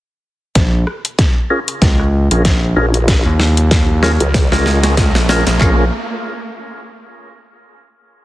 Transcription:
0.55 0.85 A#1 medium
0.55 kick medium
0.55 snare soft
0.55 closed hi-hat soft
0.55 riser medium
0.87 cross-stick medium
1.05 closed hi-hat medium
1.19 kick medium
1.19 snare soft
1.19 closed hi-hat soft
1.50 1.60 C#4 medium
1.50 1.60 F4 medium
1.50 1.60 G#4 medium
1.50 1.60 A#4 loud
1.68 closed hi-hat medium
1.82 2.28 C#2 loud
1.82 kick medium
1.82 snare medium
1.82 closed hi-hat medium
2.00 cross-stick soft
2.31 2.74 A#1 medium
2.31 2.43 C#4 medium
2.31 2.43 F4 medium
2.31 2.43 G#4 medium
2.31 2.43 A#4 medium
2.31 closed hi-hat medium
2.45 kick loud
2.45 snare medium
2.45 closed hi-hat medium
2.76 3.23 A#1 medium
2.76 2.86 C#4 medium
2.76 2.86 F4 medium
2.76 2.86 G#4 medium
2.76 2.86 A#4 medium
2.94 closed hi-hat medium
3.08 kick medium
3.08 snare medium
3.08 closed hi-hat medium
3.26 4.18 D#2 medium
3.40 snare medium
3.57 closed hi-hat medium
3.71 kick medium
3.71 snare medium
3.71 closed hi-hat medium
4.03 4.13 C#4 medium
4.03 4.13 F4 medium
4.03 4.12 G#4 medium
4.03 4.12 A#4 loud
4.03 snare medium
4.20 4.49 C#2 loud
4.20 closed hi-hat medium
4.34 kick loud
4.34 snare medium
4.34 closed hi-hat medium
4.52 5.13 C#2 loud
4.52 4.80 C#4 medium
4.52 4.80 F4 medium
4.52 4.80 G#4 medium
4.52 4.80 A#4 medium
4.52 snare medium
4.66 snare loud
4.83 4.96 C#4 medium
4.83 4.96 F4 medium
4.83 4.96 G#4 medium
4.83 4.96 A#4 medium
4.83 snare medium
4.83 closed hi-hat medium
4.97 kick loud
4.97 snare loud
4.97 closed hi-hat medium
5.15 5.44 A#1 loud
5.15 snare medium
5.29 5.45 C#4 loud
5.29 5.45 F4 medium
5.29 5.45 G#4 medium
5.29 5.45 A#4 loud
5.29 snare loud
5.47 5.58 A#1 loud
5.47 snare loud
5.47 closed hi-hat medium
5.61 5.90 A#1 loud
5.61 5.85 C#4 medium
5.61 5.85 F4 medium
5.61 5.85 G#4 medium
5.61 5.85 A#4 loud
5.61 kick loud
5.61 clap medium

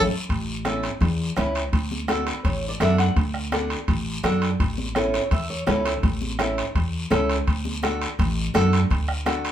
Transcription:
0.29 0.87 A1 medium
0.29 bombo low medium
0.29 high timbale medium
0.29 long guiro medium
0.65 0.90 C#4 medium
0.65 0.90 E4 medium
0.65 0.90 A4 medium
0.65 bombo rim medium
0.65 high conga medium
0.65 high timbale medium
0.65 short guiro medium
0.83 high timbale medium
0.83 short guiro medium
1.01 1.30 E2 medium
1.01 bombo low medium
1.01 high timbale medium
1.01 long guiro medium
1.36 1.66 C#2 medium
1.36 1.62 C#4 medium
1.36 1.62 E4 medium
1.36 1.62 B4 loud
1.36 bombo rim medium
1.36 high conga medium
1.36 high timbale medium
1.36 short guiro medium
1.55 high timbale medium
1.55 short guiro medium
1.73 2.30 D2 medium
1.73 bombo low medium
1.73 high timbale medium
1.73 long guiro medium
1.91 high conga medium
2.08 2.33 D4 medium
2.08 2.34 F#4 medium
2.08 2.27 A4 medium
2.08 bombo rim medium
2.08 high conga medium
2.08 high timbale medium
2.08 short guiro medium
2.27 2.44 B4 medium
2.27 high timbale medium
2.27 short guiro medium
2.45 2.73 A1 medium
2.45 2.67 C#5 medium
2.45 bombo low medium
2.45 high timbale medium
2.45 long guiro medium
2.69 2.80 D5 medium
2.80 3.09 F#2 medium
2.80 3.06 D4 medium
2.80 3.06 F#4 medium
2.80 3.06 A4 loud
2.80 2.97 E5 medium
2.80 bombo rim medium
2.80 high conga medium
2.80 high timbale medium
2.80 short guiro medium
2.98 3.15 F#5 medium
2.98 high timbale medium
2.98 short guiro medium
3.16 3.74 D2 medium
3.16 bombo low medium
3.16 high timbale medium
3.16 long guiro medium
3.34 bombo rim medium
3.52 3.77 D4 medium
3.52 3.78 F#4 medium
3.52 3.78 A4 medium
3.52 bombo rim medium
3.52 high conga medium
3.52 high timbale medium
3.52 short guiro medium
3.70 high timbale medium
3.70 short guiro medium
3.88 4.17 A1 medium
3.88 bombo low medium
3.88 high timbale medium
3.88 long guiro medium
4.23 4.52 F#2 medium
4.23 4.49 D4 medium
4.23 4.49 F#4 medium
4.23 4.49 A4 medium
4.23 bombo rim medium
4.23 high conga medium
4.23 high timbale medium
4.23 short guiro medium
4.42 high timbale medium
4.42 short guiro medium
4.60 5.17 A1 medium
4.60 bombo low medium
4.60 high timbale medium
4.60 long guiro medium
4.78 high conga medium
4.95 5.21 C#4 medium
4.95 5.21 E4 medium
4.95 5.21 A4 medium
4.95 bombo rim medium
4.95 high conga medium
4.95 high timbale medium
4.95 short guiro medium
5.14 5.30 C#5 medium
5.14 high timbale medium
5.14 short guiro medium
5.31 5.60 E2 medium
5.31 5.48 E5 medium
5.31 bombo low medium
5.31 high timbale medium
5.31 long guiro medium
5.50 5.66 C#5 medium
5.66 5.96 C#2 medium
5.66 5.92 C#4 medium
5.66 5.92 E4 medium
5.66 5.84 A4 loud
5.66 5.84 B4 medium
5.66 bombo rim medium
5.66 high conga medium
5.66 high timbale medium
5.66 low timbale medium
5.66 short guiro medium
5.85 6.02 A4 medium
5.85 high timbale medium
5.85 short guiro medium
6.03 6.61 A1 medium
6.03 bombo low medium
6.03 high timbale medium
6.03 long guiro medium
6.21 high conga medium
6.39 6.64 C#4 medium
6.39 6.64 E4 medium
6.39 6.65 A4 medium
6.39 bombo rim medium
6.39 high conga medium
6.39 high timbale medium
6.39 short guiro medium
6.58 high timbale medium
6.58 short guiro medium
6.75 7.04 E2 medium
6.75 bombo low medium
6.75 high timbale medium
6.75 long guiro medium
7.10 7.40 C#2 loud
7.10 7.36 C#4 medium
7.10 7.36 E4 medium
7.10 7.36 A4 loud
7.10 bombo rim medium
7.10 high conga medium
7.10 high timbale medium
7.10 short guiro medium
7.29 high timbale medium
7.29 short guiro medium
7.47 8.05 D2 medium
7.47 bombo low medium
7.47 high timbale medium
7.47 long guiro medium
7.65 high conga medium
7.83 8.08 D4 medium
7.83 8.08 F#4 medium
7.83 8.08 A4 medium
7.83 bombo rim medium
7.83 high conga medium
7.83 high timbale medium
7.83 short guiro medium
8.01 high timbale medium
8.01 short guiro medium
8.19 8.48 A1 loud
8.19 bombo low medium
8.19 high timbale medium
8.19 long guiro medium
8.54 8.84 F#2 medium
8.54 8.79 D4 medium
8.54 8.80 F#4 medium
8.54 8.80 A4 loud
8.54 bombo rim medium
8.54 high conga medium
8.54 high timbale medium
8.54 short guiro medium
8.73 high timbale medium
8.73 short guiro medium
8.90 9.48 D2 medium
8.90 bombo low medium
8.90 high timbale medium
8.90 long guiro medium
9.09 bombo rim medium
9.26 9.51 D4 medium
9.26 9.51 F#4 medium
9.26 9.52 A4 medium
9.26 bombo rim medium
9.26 high conga medium
9.26 high timbale medium
9.26 short guiro medium
9.45 high timbale medium
9.45 short guiro medium

